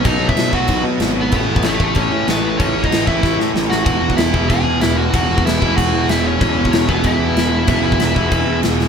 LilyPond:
<<
  \new Staff \with { instrumentName = "Lead electric guitar" } { \time 4/4 \key a \lydian \tempo 4 = 189 <dis' dis''>8. <e' e''>8. <fis' fis''>4 r4 <b b'>8 | <b b'>4 <a a'>4 <cis' cis''>4 <b b'>4 | <cis' cis''>8. <dis' dis''>8. <e' e''>4 r4 <fis' fis''>8 | <fis' fis''>4 <e' e''>4 <gis' gis''>4 <e' e''>8 <fis' fis''>8 |
<fis' fis''>4 <e' e''>4 <fis' fis''>4 <e' e''>8 <cis' cis''>8~ | <cis' cis''>4 <cis' cis''>8 <b b'>8 <e' e''>2~ | <e' e''>2. r4 | }
  \new Staff \with { instrumentName = "Overdriven electric guitar" } { \clef bass \time 4/4 \key a \lydian <b, fis b>4. <b, fis b>2~ <b, fis b>8 | <a, e a>4. <a, e a>2~ <a, e a>8 | <a, e a>4. <a, e a>2~ <a, e a>8 | <e, b, e>4. <e, b, e>2~ <e, b, e>8 |
<e, b, e>4. <e, b, e>2~ <e, b, e>8 | <e, b, e>4. <e, b, e>2~ <e, b, e>8 | <e, b, e>4. <e, b, e>2~ <e, b, e>8 | }
  \new Staff \with { instrumentName = "Overdriven electric guitar" } { \clef bass \time 4/4 \key a \lydian <b, fis b>4. <b, fis b>2~ <b, fis b>8 | <a, e a>4. <a, e a>2~ <a, e a>8 | <a, e a>4. <a, e a>2~ <a, e a>8 | <e, b, e>4. <e, b, e>2~ <e, b, e>8 |
<e, b, e>4. <e, b, e>2~ <e, b, e>8 | <e, b, e>4. <e, b, e>2~ <e, b, e>8 | <e, b, e>4. <e, b, e>2~ <e, b, e>8 | }
  \new Staff \with { instrumentName = "Picked electric bass" } { \clef bass \time 4/4 \key a \lydian b,,8 b,,8 b,,8 b,,8 b,,8 b,8 gis,,4 | a,,8 a,,8 a,,8 a,,8 a,,8 a,8 a,,4 | a,,8 a,,8 a,,8 a,,8 a,,8 a,8 a,,4 | e,,8 e,,8 e,,8 e,,8 e,,8 e,8 e,,4 |
e,,8 e,,8 e,,8 e,,8 e,,8 e,8 e,,4 | e,,8 e,,8 e,,8 e,,8 e,,8 e,8 e,,4 | e,,8 e,,8 e,,8 e,,8 e,,8 e,8 e,,4 | }
  \new DrumStaff \with { instrumentName = "Drums" } \drummode { \time 4/4 <cymc bd>8. bd16 <cymc sn>8 bd8 <cymc bd>4 <cymc sn>4 | <cymc bd>8. bd16 <cymc sn>8 bd8 <cymc bd>4 <cymc sn>4 | <cymc bd>8. bd16 <cymc sn>8 bd8 <bd sn>8 sn8 sn8 sn8 | <cymc bd>8. bd16 <cymc sn>8 bd8 <cymc bd>4 <cymc sn>4 |
<cymc bd>8. bd16 <cymc sn>8 bd8 <cymc bd>4 <cymc sn>4 | <cymc bd>8. bd16 <cymc sn>8 bd8 <cymc bd>4 <cymc sn>4 | <cymc bd>8. bd16 <cymc sn>8 bd8 <cymc bd>4 <cymc sn>8 sn8 | }
>>